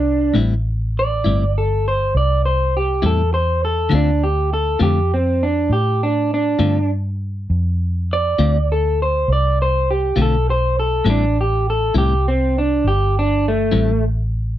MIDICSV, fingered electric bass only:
0, 0, Header, 1, 2, 480
1, 0, Start_track
1, 0, Key_signature, 0, "minor"
1, 0, Tempo, 594059
1, 292, Time_signature, 12, 3, 24, 8
1, 11783, End_track
2, 0, Start_track
2, 0, Title_t, "Fingered electric bass"
2, 0, Program_c, 0, 33
2, 0, Note_on_c, 0, 36, 82
2, 274, Note_off_c, 0, 36, 0
2, 287, Note_on_c, 0, 33, 75
2, 989, Note_off_c, 0, 33, 0
2, 1014, Note_on_c, 0, 31, 81
2, 1712, Note_off_c, 0, 31, 0
2, 1734, Note_on_c, 0, 36, 73
2, 2432, Note_off_c, 0, 36, 0
2, 2453, Note_on_c, 0, 40, 75
2, 3152, Note_off_c, 0, 40, 0
2, 3172, Note_on_c, 0, 38, 74
2, 3872, Note_off_c, 0, 38, 0
2, 3884, Note_on_c, 0, 41, 72
2, 4588, Note_off_c, 0, 41, 0
2, 4603, Note_on_c, 0, 45, 76
2, 5307, Note_off_c, 0, 45, 0
2, 5329, Note_on_c, 0, 43, 81
2, 6031, Note_off_c, 0, 43, 0
2, 6058, Note_on_c, 0, 41, 74
2, 6755, Note_off_c, 0, 41, 0
2, 6779, Note_on_c, 0, 38, 82
2, 7476, Note_off_c, 0, 38, 0
2, 7500, Note_on_c, 0, 36, 73
2, 8196, Note_off_c, 0, 36, 0
2, 8216, Note_on_c, 0, 35, 80
2, 8914, Note_off_c, 0, 35, 0
2, 8937, Note_on_c, 0, 33, 81
2, 9635, Note_off_c, 0, 33, 0
2, 9656, Note_on_c, 0, 36, 80
2, 10354, Note_off_c, 0, 36, 0
2, 10377, Note_on_c, 0, 31, 77
2, 11074, Note_off_c, 0, 31, 0
2, 11094, Note_on_c, 0, 33, 83
2, 11783, Note_off_c, 0, 33, 0
2, 11783, End_track
0, 0, End_of_file